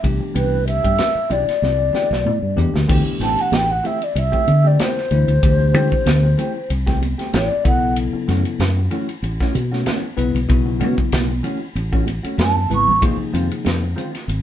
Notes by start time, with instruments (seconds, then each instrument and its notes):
0.03 fingered electric bass C2, tine electric piano B2 E3 A3 D4 G4, muted clean electric guitar stroke, kick, hi-hat pedal, ride
0.20 muted clean electric guitar stroke
0.34 fingered electric bass C2, clean electric guitar E3 B3 D4 G4, flute B4, ride
0.67 flute E5, muted clean electric guitar stroke, hi-hat pedal, ride
0.84 fingered electric bass G2, clean electric guitar B3 D4 G4, kick, ride
0.98 muted clean electric guitar stroke, snare, ride, high conga
1.15 muted fingered electric bass stroke, muted clean electric guitar stroke
1.30 fingered electric bass B1, clean electric guitar E3 B3 D4 G4, flute D5, hi-hat pedal, ride
1.46 muted clean electric guitar stroke, muted fingered electric bass stroke, snare, ride
1.62 fingered electric bass C2, snare, muted conga, high conga
1.78 muted clean electric guitar stroke
1.93 clean electric guitar E3 B3 D4 G4, snare, hi-hat pedal, muted conga
2.10 fingered electric bass B1, muted clean electric guitar stroke, snare
2.25 fingered electric bass A2, mid tom, high conga
2.42 fingered electric bass G2
2.56 fingered electric bass E2, tine electric piano B2 E3 A3 D4 G4, muted clean electric guitar stroke, floor tom, hi-hat pedal
2.74 fingered electric bass D2, muted clean electric guitar stroke, snare
2.88 fingered electric bass D2, tine electric piano B2 E3 A3 D4 G4, clean electric guitar E3 A3 C4 G4, kick, crash
3.05 muted clean electric guitar stroke
3.20 fingered electric bass A1, clean electric guitar E3 A3 C4 G4, flute A5, snare, hi-hat pedal, ride, muted conga
3.37 muted clean electric guitar stroke, ride
3.41 flute F#5
3.52 fingered electric bass A1, snare, ride, high conga
3.56 flute G5
3.69 flute F#5, muted clean electric guitar stroke
3.83 clean electric guitar E3 A3 C4 G4, flute E5, hi-hat pedal, ride
4.01 flute D5, muted clean electric guitar stroke, ride
4.15 fingered electric bass C2, flute E5, muted clean electric guitar stroke, ride, muted conga
4.32 clean electric guitar E3 A3 C4 G4, kick
4.47 fingered electric bass D3, muted clean electric guitar stroke, hi-hat pedal, ride, high conga
4.64 clean electric guitar A3 C4 G4, flute D5
4.79 clean electric guitar E3 A3 C4 G4, flute C5, snare, ride, muted conga, high conga
4.96 muted clean electric guitar stroke, snare
5.11 fingered electric bass D2, tine electric piano B2 E3 A3 D4 E4, muted clean electric guitar stroke, hi-hat pedal, ride
5.28 fingered electric bass D2, ride
5.43 fingered electric bass D2, tine electric piano B2 E3 A3 D4 G4, kick, ride
5.59 muted clean electric guitar stroke
5.74 fingered electric bass D3, clean electric guitar E3 A3 C4 G4, hi-hat pedal, ride, muted conga, low conga
5.91 muted clean electric guitar stroke, kick
6.06 fingered electric bass D2, snare, ride, high conga
6.23 muted clean electric guitar stroke
6.38 clean electric guitar E3 A3 C4 G4, hi-hat pedal, ride
6.55 muted clean electric guitar stroke
6.69 fingered electric bass C2, muted clean electric guitar stroke, ride, muted conga
6.87 clean electric guitar E3 A3 C4 G4, kick, snare
7.01 muted clean electric guitar stroke, hi-hat pedal, ride, high conga
7.18 clean electric guitar A3 C4 G4, snare, ride
7.33 fingered electric bass A1, clean electric guitar E3 A3 C4 G4, flute D5, snare, ride, muted conga, high conga
7.49 muted clean electric guitar stroke
7.64 fingered electric bass B1, tine electric piano C#3 F#3 B3 E4 A4, flute F#5, muted clean electric guitar stroke, kick, hi-hat pedal, ride
7.96 ride, muted conga
8.13 muted clean electric guitar stroke, muted fingered electric bass stroke
8.28 fingered electric bass F#2, clean electric guitar E3 A3 C#4 F#4, snare, hi-hat pedal, ride, muted conga
8.45 muted clean electric guitar stroke, ride
8.59 fingered electric bass F#2, snare, ride, high conga
8.77 muted clean electric guitar stroke
8.91 clean electric guitar E3 A3 C#4 F#4, hi-hat pedal, ride
9.09 muted clean electric guitar stroke, ride
9.23 fingered electric bass A1, muted clean electric guitar stroke, ride, muted conga
9.40 clean electric guitar E3 A3 C#4 F#4, kick, snare
9.55 fingered electric bass B2, muted clean electric guitar stroke, hi-hat pedal, ride, high conga
9.72 clean electric guitar A3 C#4 F#4, snare
9.85 clean electric guitar E3 A3 C#4 F#4, snare, ride, muted conga, high conga
10.03 muted clean electric guitar stroke
10.17 fingered electric bass B1, tine electric piano C#3 F#3 B3 E4 B4, muted clean electric guitar stroke, hi-hat pedal, ride
10.34 fingered electric bass B1, ride
10.48 fingered electric bass B1, tine electric piano C#3 F#3 B3 E4 F#4, kick, ride, muted conga
10.66 muted clean electric guitar stroke
10.80 fingered electric bass B2, clean electric guitar E3 A3 C#4 F#4, hi-hat pedal, ride, muted conga, low conga
10.98 muted clean electric guitar stroke, kick
11.12 fingered electric bass B1, snare, ride, high conga
11.29 muted clean electric guitar stroke
11.43 clean electric guitar E3 A3 C#4 F#4, hi-hat pedal, ride
11.61 muted clean electric guitar stroke
11.75 fingered electric bass A1, muted clean electric guitar stroke, ride, muted conga
11.92 clean electric guitar E3 A3 C#4 F#4, kick
12.07 muted clean electric guitar stroke, hi-hat pedal, ride, high conga
12.23 clean electric guitar A3 C#4 F#4, muted fingered electric bass stroke, ride
12.38 fingered electric bass F#2, clean electric guitar E3 A3 C#4 F#4, flute A5, snare, ride, high conga
12.56 muted clean electric guitar stroke, high conga
12.70 fingered electric bass G#1, tine electric piano C#3 F#3 B3 E4 B4, muted clean electric guitar stroke, hi-hat pedal, ride, low conga
12.74 flute C#6
12.88 fingered electric bass A1, low conga
13.01 fingered electric bass A#1, tine electric piano C3 F3 A#3 D#4 G#4, clean electric guitar D#3 G#3 C4 F4, kick, ride, muted conga
13.18 muted clean electric guitar stroke, muted fingered electric bass stroke
13.33 fingered electric bass F2, clean electric guitar D#3 G#3 C4 F4, hi-hat pedal, ride, muted conga
13.50 muted clean electric guitar stroke, ride
13.65 fingered electric bass F2, snare, ride, high conga
13.82 muted clean electric guitar stroke
13.96 clean electric guitar D#3 G#3 C4 F4, hi-hat pedal, ride
14.13 muted clean electric guitar stroke, snare, ride
14.28 fingered electric bass G#1, muted clean electric guitar stroke, ride, muted conga